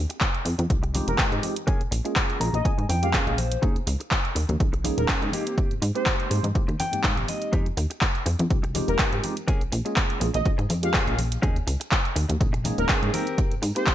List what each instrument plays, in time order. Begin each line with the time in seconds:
0.10 muted clean electric guitar stroke, closed hi-hat, tambourine
0.21 kick, clap, closed hi-hat
0.34 closed hi-hat
0.45 analog synth bass F2, muted clean electric guitar stroke, open hi-hat, tambourine
0.58 analog synth bass F2, muted clean electric guitar stroke, closed hi-hat, tambourine, high conga
0.70 analog synth bass C2, tine electric piano G#3 C4 D#4 F4 G4, kick, closed hi-hat
0.83 muted clean electric guitar stroke, closed hi-hat, tambourine
0.94 tine electric piano G#3 C4 D#4 F4 G4, muted clean electric guitar stroke, open hi-hat, tambourine, high conga
1.07 analog synth bass F1, analog polysynth A#4, closed hi-hat, tambourine
1.18 clean electric guitar G#3 D#4 G4, tine electric piano G#3 C4 D#4 F4 G4, kick, clap, closed hi-hat
1.32 analog synth bass G#2, closed hi-hat, tambourine
1.43 tine electric piano G#3 C4 D#4 F4 G4, open hi-hat, tambourine, high conga
1.56 closed hi-hat, tambourine
1.67 clean electric guitar A#3 C#4 G#4, kick, closed hi-hat
1.81 analog synth bass A#1, closed hi-hat
1.91 analog synth bass A#1, muted clean electric guitar stroke, open hi-hat, tambourine
2.05 tine electric piano G#3 A#3 C#4 F4 G#4, muted clean electric guitar stroke, closed hi-hat, tambourine
2.16 kick, clap, closed hi-hat
2.30 closed hi-hat
2.40 analog synth bass A#1, tine electric piano G#3 A#3 C#4 F4 G#4, clean electric guitar A#5, muted clean electric guitar stroke, open hi-hat, tambourine
2.53 analog synth bass A#1, analog polysynth D#5, muted clean electric guitar stroke, closed hi-hat, tambourine, high conga
2.65 tine electric piano G#3 A#3 C#4 F4 G#4, clean electric guitar G#5, kick, closed hi-hat
2.78 analog synth bass G#2, muted clean electric guitar stroke, closed hi-hat, tambourine
2.89 analog synth bass F2, clean electric guitar G5, muted clean electric guitar stroke, open hi-hat, tambourine, high conga
3.02 tine electric piano G#3 A#3 C#4 F4 G4, analog polysynth F5, closed hi-hat, tambourine
3.13 clean electric guitar A#3 C#4 G#4 F5, tine electric piano A#3 C#4 F4 G#4, kick, clap, closed hi-hat
3.27 analog synth bass A#1, tine electric piano G#3 A#3 C#4 F4 G#4, closed hi-hat, tambourine
3.38 clean electric guitar C5, open hi-hat, tambourine, high conga
3.51 closed hi-hat, tambourine
3.62 analog synth bass D#2, clean electric guitar C#4 D#4 G#4, kick, closed hi-hat
3.76 closed hi-hat, tambourine
3.87 analog synth bass C#2, muted clean electric guitar stroke, open hi-hat, tambourine
4.00 muted clean electric guitar stroke, closed hi-hat, tambourine
4.11 kick, clap, closed hi-hat
4.25 closed hi-hat
4.35 analog synth bass D#2, muted clean electric guitar stroke, open hi-hat, tambourine
4.49 analog synth bass D#2, muted clean electric guitar stroke, closed hi-hat, tambourine, high conga
4.60 analog synth bass A#1, tine electric piano G#3 A#3 C#4 D#4 G#4, kick, closed hi-hat
4.73 muted clean electric guitar stroke, closed hi-hat, tambourine
4.84 tine electric piano G#3 A#3 C#4 D#4 G#4, muted clean electric guitar stroke, open hi-hat, tambourine, high conga
4.98 analog synth bass D#1, analog polysynth A#4, closed hi-hat, tambourine
5.08 tine electric piano G#3 A#3, clean electric guitar C#4 D#4 G#4, kick, clap, closed hi-hat
5.22 analog synth bass G#2, closed hi-hat
5.32 tine electric piano G#3 A#3 C4 D#4 G4, clean electric guitar A#3 C4 G4, open hi-hat, tambourine, high conga
5.46 closed hi-hat, tambourine
5.57 kick, closed hi-hat, tambourine
5.71 analog synth bass G#2, closed hi-hat, tambourine
5.82 analog synth bass G#2, muted clean electric guitar stroke, open hi-hat, tambourine
5.95 tine electric piano G#3 A#3 C4 D#4 G4, analog polysynth C5, muted clean electric guitar stroke, closed hi-hat, tambourine
6.06 kick, clap, closed hi-hat
6.20 closed hi-hat
6.30 analog synth bass G#2, tine electric piano G#3 A#3 C4 D#4 G4, muted clean electric guitar stroke, open hi-hat, tambourine
6.43 analog synth bass G#2, muted clean electric guitar stroke, closed hi-hat, tambourine, high conga
6.54 tine electric piano G#3 A#3 C4 D#4 G4, kick, closed hi-hat, tambourine
6.68 analog synth bass D#2, muted clean electric guitar stroke, closed hi-hat
6.79 clean electric guitar G5, muted clean electric guitar stroke, open hi-hat, tambourine, high conga
6.92 analog synth bass G#2, tine electric piano G#3 A#3 C4 D#4 G4, closed hi-hat, tambourine
7.04 analog synth bass G#2, clean electric guitar A#3 C4 G4 F5, kick, clap, closed hi-hat
7.17 analog synth bass G#1, closed hi-hat
7.28 clean electric guitar D#5, open hi-hat, tambourine, high conga
7.42 closed hi-hat, tambourine
7.52 analog synth bass F2, clean electric guitar G#3 D#4 G4, kick, closed hi-hat, tambourine
7.66 closed hi-hat, tambourine
7.77 analog synth bass D#2, muted clean electric guitar stroke, open hi-hat, tambourine
7.90 muted clean electric guitar stroke, closed hi-hat, tambourine
8.01 kick, clap, closed hi-hat
8.15 closed hi-hat
8.26 analog synth bass F2, muted clean electric guitar stroke, open hi-hat, tambourine
8.39 analog synth bass F2, muted clean electric guitar stroke, closed hi-hat, tambourine, high conga
8.50 analog synth bass C2, tine electric piano G#3 C4 D#4 F4 G4, kick, closed hi-hat
8.63 muted clean electric guitar stroke, closed hi-hat, tambourine
8.75 tine electric piano G#3 C4 D#4 F4 G4, muted clean electric guitar stroke, open hi-hat, tambourine, high conga
8.88 analog synth bass F1, analog polysynth A#4, closed hi-hat, tambourine
8.99 tine electric piano G#3 C4 D#4 F4 G4, clean electric guitar G#3 D#4 G4, kick, clap, closed hi-hat
9.13 analog synth bass G#2, closed hi-hat, tambourine
9.23 tine electric piano G#3 C4 D#4 F4 G4, open hi-hat, tambourine, high conga
9.37 closed hi-hat, tambourine
9.48 clean electric guitar A#3 C#4 G#4, kick, closed hi-hat, tambourine
9.61 analog synth bass A#1, closed hi-hat
9.72 analog synth bass A#1, muted clean electric guitar stroke, open hi-hat, tambourine
9.85 tine electric piano G#3 A#3 C#4 F4 G#4, muted clean electric guitar stroke, closed hi-hat, tambourine
9.96 kick, clap, closed hi-hat
10.10 closed hi-hat
10.20 analog synth bass A#1, tine electric piano G#3 A#3 C#4 F4 G#4, muted clean electric guitar stroke, open hi-hat, tambourine
10.34 analog synth bass A#1, analog polysynth D#5, muted clean electric guitar stroke, closed hi-hat, tambourine, high conga
10.45 tine electric piano G#3 A#3 C#4 F4 G#4, kick, closed hi-hat
10.58 analog synth bass G#2, muted clean electric guitar stroke, closed hi-hat, tambourine
10.69 analog synth bass F2, muted clean electric guitar stroke, open hi-hat, tambourine, high conga
10.83 tine electric piano G#3 A#3 C#4 F4 G4, analog polysynth F5, closed hi-hat, tambourine
10.94 clean electric guitar A#3 C#4 G#4, tine electric piano A#3 F4, kick, clap, closed hi-hat
11.07 analog synth bass A#1, tine electric piano G#3 A#3 C#4 F4 G#4, closed hi-hat, tambourine
11.18 open hi-hat, tambourine, high conga
11.32 closed hi-hat, tambourine
11.42 analog synth bass D#2, clean electric guitar C#4 D#4 G#4, kick, closed hi-hat
11.56 closed hi-hat, tambourine
11.67 analog synth bass C#2, muted clean electric guitar stroke, open hi-hat, tambourine
11.80 muted clean electric guitar stroke, closed hi-hat, tambourine
11.92 kick, clap, closed hi-hat
12.05 closed hi-hat, tambourine
12.16 analog synth bass D#2, muted clean electric guitar stroke, open hi-hat, tambourine
12.29 analog synth bass D#2, muted clean electric guitar stroke, closed hi-hat, tambourine, high conga
12.40 analog synth bass A#1, tine electric piano G#3 A#3 C#4 D#4 G#4, kick, closed hi-hat, tambourine
12.53 muted clean electric guitar stroke, closed hi-hat, tambourine
12.64 tine electric piano G#3 A#3 C#4 D#4 G#4, muted clean electric guitar stroke, open hi-hat, tambourine, high conga
12.78 analog synth bass D#1, analog polysynth A#4, closed hi-hat, tambourine
12.89 tine electric piano G#3 A#3 C#4 D#4 G#4, clean electric guitar C#4 D#4 G#4, kick, clap, closed hi-hat
13.03 analog synth bass G#2, closed hi-hat, tambourine
13.13 tine electric piano G#3 A#3 C4 D#4 G4, clean electric guitar C4 G4 A#4, open hi-hat, tambourine, high conga
13.27 closed hi-hat, tambourine
13.38 kick, closed hi-hat, tambourine
13.51 analog synth bass G#2, closed hi-hat, tambourine
13.62 analog synth bass G#2, muted clean electric guitar stroke, open hi-hat, tambourine
13.75 tine electric piano G#3 A#3 C4 D#4 G4, analog polysynth C5, muted clean electric guitar stroke, closed hi-hat, tambourine
13.87 kick, clap, closed hi-hat